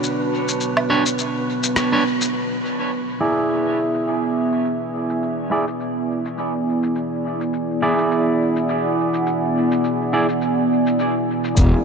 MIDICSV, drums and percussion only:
0, 0, Header, 1, 2, 480
1, 0, Start_track
1, 0, Tempo, 576923
1, 28, Time_signature, 4, 2, 24, 8
1, 9855, End_track
2, 0, Start_track
2, 0, Title_t, "Drums"
2, 28, Note_on_c, 9, 82, 42
2, 111, Note_off_c, 9, 82, 0
2, 401, Note_on_c, 9, 82, 52
2, 484, Note_off_c, 9, 82, 0
2, 504, Note_on_c, 9, 82, 40
2, 587, Note_off_c, 9, 82, 0
2, 640, Note_on_c, 9, 77, 82
2, 723, Note_off_c, 9, 77, 0
2, 881, Note_on_c, 9, 82, 52
2, 964, Note_off_c, 9, 82, 0
2, 986, Note_on_c, 9, 82, 42
2, 1069, Note_off_c, 9, 82, 0
2, 1359, Note_on_c, 9, 82, 51
2, 1442, Note_off_c, 9, 82, 0
2, 1466, Note_on_c, 9, 37, 85
2, 1466, Note_on_c, 9, 82, 40
2, 1549, Note_off_c, 9, 37, 0
2, 1549, Note_off_c, 9, 82, 0
2, 1840, Note_on_c, 9, 82, 51
2, 1923, Note_off_c, 9, 82, 0
2, 1945, Note_on_c, 9, 82, 37
2, 2028, Note_off_c, 9, 82, 0
2, 2320, Note_on_c, 9, 82, 46
2, 2403, Note_off_c, 9, 82, 0
2, 2425, Note_on_c, 9, 82, 36
2, 2508, Note_off_c, 9, 82, 0
2, 2801, Note_on_c, 9, 82, 45
2, 2884, Note_off_c, 9, 82, 0
2, 2907, Note_on_c, 9, 82, 36
2, 2990, Note_off_c, 9, 82, 0
2, 3281, Note_on_c, 9, 82, 47
2, 3365, Note_off_c, 9, 82, 0
2, 3387, Note_on_c, 9, 82, 36
2, 3470, Note_off_c, 9, 82, 0
2, 3762, Note_on_c, 9, 82, 45
2, 3846, Note_off_c, 9, 82, 0
2, 3868, Note_on_c, 9, 82, 38
2, 3951, Note_off_c, 9, 82, 0
2, 4241, Note_on_c, 9, 82, 46
2, 4324, Note_off_c, 9, 82, 0
2, 4347, Note_on_c, 9, 82, 36
2, 4431, Note_off_c, 9, 82, 0
2, 4721, Note_on_c, 9, 82, 48
2, 4804, Note_off_c, 9, 82, 0
2, 4828, Note_on_c, 9, 82, 36
2, 4911, Note_off_c, 9, 82, 0
2, 5203, Note_on_c, 9, 82, 48
2, 5286, Note_off_c, 9, 82, 0
2, 5308, Note_on_c, 9, 82, 37
2, 5391, Note_off_c, 9, 82, 0
2, 5682, Note_on_c, 9, 82, 47
2, 5765, Note_off_c, 9, 82, 0
2, 5787, Note_on_c, 9, 82, 38
2, 5870, Note_off_c, 9, 82, 0
2, 6162, Note_on_c, 9, 82, 47
2, 6245, Note_off_c, 9, 82, 0
2, 6267, Note_on_c, 9, 82, 36
2, 6350, Note_off_c, 9, 82, 0
2, 6643, Note_on_c, 9, 82, 48
2, 6726, Note_off_c, 9, 82, 0
2, 6749, Note_on_c, 9, 82, 37
2, 6832, Note_off_c, 9, 82, 0
2, 7123, Note_on_c, 9, 82, 46
2, 7206, Note_off_c, 9, 82, 0
2, 7227, Note_on_c, 9, 82, 38
2, 7310, Note_off_c, 9, 82, 0
2, 7601, Note_on_c, 9, 82, 45
2, 7684, Note_off_c, 9, 82, 0
2, 7707, Note_on_c, 9, 82, 37
2, 7790, Note_off_c, 9, 82, 0
2, 8081, Note_on_c, 9, 82, 46
2, 8164, Note_off_c, 9, 82, 0
2, 8188, Note_on_c, 9, 82, 37
2, 8271, Note_off_c, 9, 82, 0
2, 8560, Note_on_c, 9, 82, 46
2, 8643, Note_off_c, 9, 82, 0
2, 8665, Note_on_c, 9, 82, 36
2, 8749, Note_off_c, 9, 82, 0
2, 9039, Note_on_c, 9, 82, 45
2, 9123, Note_off_c, 9, 82, 0
2, 9145, Note_on_c, 9, 82, 37
2, 9228, Note_off_c, 9, 82, 0
2, 9519, Note_on_c, 9, 82, 45
2, 9602, Note_off_c, 9, 82, 0
2, 9625, Note_on_c, 9, 82, 44
2, 9629, Note_on_c, 9, 36, 104
2, 9708, Note_off_c, 9, 82, 0
2, 9712, Note_off_c, 9, 36, 0
2, 9855, End_track
0, 0, End_of_file